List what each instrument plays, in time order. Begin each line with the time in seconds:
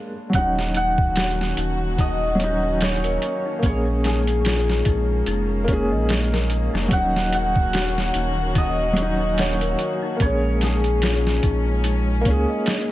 Already playing: felt piano G#3 A#3 D4
0.30 felt piano F#3, string section A#3 C#4, closed hi-hat
0.34 sub bass D#1, string section D#3 F#4, felt piano C#4, hammered dulcimer F#5, kick
0.38 felt piano D#4
0.59 snare
0.74 celesta D#4, hammered dulcimer F#5, closed hi-hat
0.98 kick
1.16 celesta F#4, snare, open hi-hat
1.41 snare
1.57 sub bass D#1, celesta D#4, closed hi-hat
1.98 celesta D#4, hammered dulcimer D#5, kick, closed hi-hat
2.35 felt piano F#3
2.40 felt piano C#4, closed hi-hat
2.44 felt piano D#4
2.63 celesta D#5
2.81 hammered dulcimer C#5, snare, closed hi-hat
3.04 celesta A#4, closed hi-hat
3.22 closed hi-hat
3.45 celesta D#4
3.59 sub bass A#1, felt piano A#3, kick
3.63 string section G#3, felt piano C#4, hammered dulcimer C#5, closed hi-hat
3.68 felt piano G#4
4.04 celesta D#4, hammered dulcimer G#4, snare, closed hi-hat
4.27 closed hi-hat
4.45 celesta F4, snare, closed hi-hat
4.69 snare
4.85 sub bass A#1, celesta D#4, kick, closed hi-hat
5.26 sub bass F1, celesta D#4, closed hi-hat
5.64 sub bass F1, felt piano A#3, kick, closed hi-hat
5.68 felt piano C#4
5.73 felt piano G#4
5.92 sub bass A#1, celesta D#5
6.09 snare, closed hi-hat
6.33 celesta A#4, snare
6.50 closed hi-hat
6.74 sub bass F1, celesta D#4, snare
6.88 sub bass D#1, felt piano F#3, string section C#4 F#4, kick, closed hi-hat
6.92 string section D#3, felt piano C#4, hammered dulcimer F#5
6.97 felt piano D#4
7.16 snare
7.33 celesta D#4, hammered dulcimer F#5, closed hi-hat
7.56 kick
7.73 celesta F#4, snare, open hi-hat
7.98 snare
8.14 sub bass D#1, celesta D#4, closed hi-hat
8.55 celesta D#4, hammered dulcimer D#5, kick, closed hi-hat
8.93 felt piano F#3, closed hi-hat
8.98 felt piano C#4
9.02 felt piano D#4
9.20 celesta D#5
9.38 hammered dulcimer C#5, snare, closed hi-hat
9.61 celesta A#4, closed hi-hat
9.79 closed hi-hat
10.03 celesta D#4
10.16 sub bass A#1, felt piano A#3, kick, closed hi-hat
10.21 string section G#3 C#4, felt piano C#4, hammered dulcimer C#5
10.25 felt piano G#4
10.61 celesta D#4, hammered dulcimer G#4, snare, closed hi-hat
10.84 closed hi-hat
11.02 celesta F4, snare, closed hi-hat
11.27 snare
11.43 sub bass A#1, celesta D#4, kick, closed hi-hat
11.84 celesta D#4, closed hi-hat
12.21 felt piano A#3, closed hi-hat
12.25 sub bass C#2, felt piano C#4, kick
12.30 felt piano G#4
12.49 celesta D#5
12.66 snare, closed hi-hat